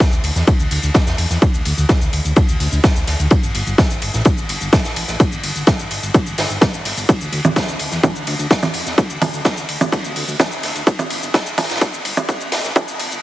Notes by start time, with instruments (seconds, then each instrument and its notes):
0.00 kick, snare, ride, shaker
0.12 detuned saw bass D2, shaker
0.24 detuned saw bass D2, open hi-hat, ride
0.36 detuned saw bass E2, snare, shaker
0.47 kick, ride, shaker
0.59 detuned saw bass D2, shaker
0.71 detuned saw bass D2, open hi-hat, ride
0.83 detuned saw bass D2, shaker
0.94 kick, snare, ride, shaker
1.07 detuned saw bass E2, snare, shaker
1.18 detuned saw bass E2, open hi-hat, ride
1.30 detuned saw bass E2, snare, shaker
1.42 kick, ride, shaker
1.54 detuned saw bass D2, shaker
1.65 detuned saw bass D2, open hi-hat, ride
1.78 detuned saw bass D2, shaker
1.89 kick, snare, ride, shaker
2.01 detuned saw bass D2, shaker
2.13 detuned saw bass D2, open hi-hat, ride
2.25 detuned saw bass D2, shaker
2.36 kick, ride, shaker
2.49 detuned saw bass D2, shaker
2.60 detuned saw bass D2, open hi-hat
2.72 detuned saw bass D2, shaker
2.83 kick, snare, ride, shaker
2.96 detuned saw bass D2, shaker
3.07 detuned saw bass D2, snare, open hi-hat, ride
3.19 detuned saw bass D2, ride, shaker
3.30 kick, ride, shaker
3.43 detuned saw bass G1, shaker
3.55 detuned saw bass G1, open hi-hat, ride
3.67 detuned saw bass G1, shaker
3.78 kick, snare, ride, shaker
3.90 detuned saw bass G1, shaker
4.02 detuned saw bass G1, open hi-hat, ride
4.14 detuned saw bass A1, snare, shaker
4.25 kick, ride, shaker
4.38 detuned saw bass G1, shaker
4.49 detuned saw bass G1, open hi-hat, ride
4.61 detuned saw bass G1, shaker
4.72 kick, snare, ride, shaker
4.85 detuned saw bass A1, snare, shaker
4.96 detuned saw bass A1, open hi-hat, ride
5.08 detuned saw bass A1, snare, shaker
5.20 kick, ride, shaker
5.32 detuned saw bass G1, shaker
5.44 detuned saw bass G1, open hi-hat, ride
5.56 detuned saw bass G1, shaker
5.67 kick, snare, ride, shaker
5.79 detuned saw bass G1, shaker
5.91 detuned saw bass G1, open hi-hat, ride
6.03 detuned saw bass G1, shaker
6.14 kick, ride, shaker
6.27 detuned saw bass G1, shaker
6.38 detuned saw bass G1, snare, open hi-hat, ride
6.50 detuned saw bass G1, shaker
6.61 kick, snare, ride, shaker
6.74 detuned saw bass G1, shaker
6.85 detuned saw bass G1, snare, open hi-hat, ride
6.97 detuned saw bass G1, open hi-hat, ride, shaker
7.09 kick, ride, shaker
7.21 detuned saw bass D2, shaker
7.32 detuned saw bass D2, open hi-hat, ride
7.45 detuned saw bass D2, low conga, shaker
7.56 kick, snare, ride, shaker
7.68 detuned saw bass D2, shaker
7.79 detuned saw bass D2, open hi-hat, ride
7.91 detuned saw bass E2, snare, shaker
8.03 kick, ride, low conga, shaker
8.16 detuned saw bass D2, shaker
8.27 detuned saw bass D2, open hi-hat, ride
8.39 detuned saw bass D2, shaker
8.50 kick, snare, ride, shaker
8.63 detuned saw bass E2, snare, low conga, shaker
8.74 detuned saw bass E2, open hi-hat, ride
8.86 detuned saw bass E2, snare, shaker
8.98 kick, ride, shaker
9.10 detuned saw bass D2, shaker
9.21 detuned saw bass D2, open hi-hat, ride, low conga
9.34 detuned saw bass D2, shaker
9.45 kick, snare, ride, shaker
9.57 detuned saw bass D2, shaker
9.69 detuned saw bass D2, open hi-hat, ride
9.81 detuned saw bass D2, low conga, shaker
9.92 kick, ride, shaker
10.04 detuned saw bass D2, shaker
10.16 detuned saw bass D2, open hi-hat
10.28 detuned saw bass D2, shaker
10.40 kick, snare, ride, low conga, shaker
10.52 detuned saw bass D2, shaker
10.63 detuned saw bass D2, snare, open hi-hat, ride
10.75 detuned saw bass D2, ride, shaker
10.87 kick, ride, shaker
10.99 detuned saw bass G1, low conga, shaker
11.10 detuned saw bass G1, open hi-hat, ride
11.23 detuned saw bass G1, shaker
11.34 kick, snare, ride, shaker
11.46 detuned saw bass G1, shaker
11.58 detuned saw bass G1, snare, open hi-hat, ride, low conga
11.63 snare, ride
11.70 detuned saw bass A1, snare, ride, shaker
11.75 snare, ride
11.81 kick, ride, shaker
11.93 detuned saw bass G1, shaker
12.05 detuned saw bass G1, open hi-hat, ride
12.17 detuned saw bass G1, low conga, shaker
12.29 kick, ride, shaker
12.41 detuned saw bass A1, shaker
12.52 detuned saw bass A1, snare, open hi-hat, ride
12.64 detuned saw bass A1, snare, shaker
12.76 kick, ride, low conga, shaker
12.88 detuned saw bass G1, shaker
12.99 detuned saw bass G1, open hi-hat, ride
13.11 detuned saw bass G1, shaker